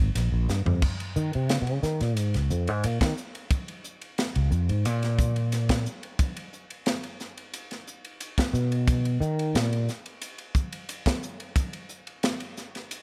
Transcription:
0.15 fretless electric bass A#1, snare, hi-hat pedal, ride
0.32 fretless electric bass A#1
0.49 fretless electric bass G2, snare, hi-hat pedal
0.66 fretless electric bass F2, floor tom
0.82 kick, crash
1.00 ride
1.16 fretless electric bass D#3, hi-hat pedal
1.33 fretless electric bass C3, ride
1.49 fretless electric bass C#3, snare, hi-hat pedal, ride
1.62 fretless electric bass B2
1.67 ride
1.73 fretless electric bass C#3
1.83 fretless electric bass D#3, snare, hi-hat pedal
2.01 fretless electric bass A#2, snare, ride
2.17 fretless electric bass G#2, hi-hat pedal, ride
2.34 fretless electric bass C#2, snare, ride
2.50 fretless electric bass F2, hi-hat pedal
2.67 fretless electric bass G#2, ride
2.84 fretless electric bass A#2, hi-hat pedal, ride
3.01 fretless electric bass D#3, kick, snare, ride
3.17 hi-hat pedal
3.35 ride
3.51 kick, hi-hat pedal, ride
3.68 ride
3.84 hi-hat pedal
4.01 ride
4.18 snare, hi-hat pedal, ride
4.35 fretless electric bass C#2, ride
4.51 fretless electric bass F2, hi-hat pedal
4.69 fretless electric bass G#2, ride
4.85 fretless electric bass A#2, hi-hat pedal, ride
5.03 snare, ride
5.19 kick, hi-hat pedal
5.36 ride
5.52 snare, hi-hat pedal, ride
5.69 kick, snare, ride
5.86 hi-hat pedal
6.03 ride
6.19 kick, hi-hat pedal, ride
6.37 ride
6.53 hi-hat pedal
6.70 ride
6.86 snare, hi-hat pedal, ride
7.04 ride
7.20 snare, hi-hat pedal
7.38 ride
7.54 hi-hat pedal, ride
7.71 snare, ride
7.87 hi-hat pedal
8.05 ride
8.20 hi-hat pedal, ride
8.38 kick, snare, ride
8.53 fretless electric bass B2, hi-hat pedal
8.72 ride
8.88 kick, hi-hat pedal, ride
9.05 ride
9.21 fretless electric bass D#3, hi-hat pedal
9.39 ride
9.55 fretless electric bass A#2, snare, hi-hat pedal, ride
9.73 ride
9.88 snare, hi-hat pedal
10.06 ride
10.22 hi-hat pedal, ride
10.38 ride
10.55 kick, hi-hat pedal
10.73 ride
10.89 hi-hat pedal, ride
11.06 kick, snare, ride
11.23 hi-hat pedal
11.40 ride
11.56 kick, hi-hat pedal, ride
11.73 ride
11.89 hi-hat pedal
12.07 ride
12.23 snare, hi-hat pedal, ride
12.40 ride
12.57 snare, hi-hat pedal
12.75 snare, ride
12.91 hi-hat pedal, ride

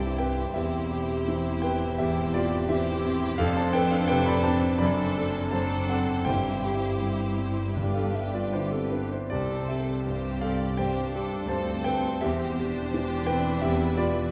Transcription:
Already playing: cello section C2, double bass section C2, grand piano G2 C4 G4 A4 C5 F5 G5 A5, french horn section C4 G4, viola section E4, violin section G4 C5
0.18 grand piano C4 B4 G5
0.54 double bass section E1, cello section E2, grand piano E2 G4 E5, viola section E4, violin section G4 C5
0.91 grand piano G4
1.28 grand piano E3
1.62 grand piano C4 B4 G5
1.98 grand piano E2 G4 E5, viola section E4, violin section G4 C5
2.34 grand piano F4 G4 D5
2.69 grand piano E3 G4 E5, viola section E4, violin section G4 C5
3.05 grand piano C4
3.38 double bass section F1, grand piano F2 A4 F5, cello section F2, french horn section C4 D4, viola section D4, violin section A4 C5
3.57 grand piano C5 A5
3.73 grand piano A4 B4 G5
3.91 grand piano A4 F5
4.08 grand piano C3 B4 G5
4.26 grand piano D5 B5
4.43 grand piano C4 C5 A5
4.78 double bass section F#1, cello section F#2, grand piano F#2 D5 B5, viola section D4, violin section A4 C5
5.18 grand piano A4
5.51 grand piano F#3 C5 A5, viola section D4, violin section A4 C5
5.89 grand piano C4 A4 F#5
6.25 double bass section G1, grand piano G2 C5 G5, timpani G2, cello section G2, viola section E4, french horn section E4, violin section G4 C5
6.65 grand piano G4
7.02 grand piano G3
7.38 grand piano C4
7.76 timpani G2, grand piano G2, french horn section B3 G4, viola section D4, violin section G4 B4
7.94 grand piano A4 F5
8.14 grand piano G4 E5
8.34 grand piano F4 D5
8.53 grand piano D3 E4 C5
8.72 grand piano C4 A4
8.92 grand piano B3 D4 B4
9.12 grand piano E4 C5
9.30 cello section C2, double bass section C2, grand piano C2 G4 D5, viola section C4, french horn section C4 G4, violin section A4 C5
9.68 grand piano G4 E5
10.05 grand piano G2, viola section C4, violin section G4 C5
10.41 grand piano C4 A4 F5, violin section D5
10.77 grand piano G2 C5 G5, french horn section C4 G4, viola section D4, violin section G4 C5
11.15 grand piano G4, violin section A4
11.48 double bass section D2, cello section D2, grand piano G2 C5 A5, viola section C4, violin section A4 C5
11.84 grand piano C4 B4 G5
12.21 double bass section E1, cello section E2, grand piano E2 G4 E5, viola section C4, french horn section C4 G4, violin section G4 C5
12.59 viola section D4, grand piano G4
12.94 grand piano E3, violin section G4
13.26 grand piano C4 B4 G5, violin section E4
13.61 grand piano E2 G4 E5, french horn section C4 G4, violin section B4
13.97 grand piano F4 G4 D5

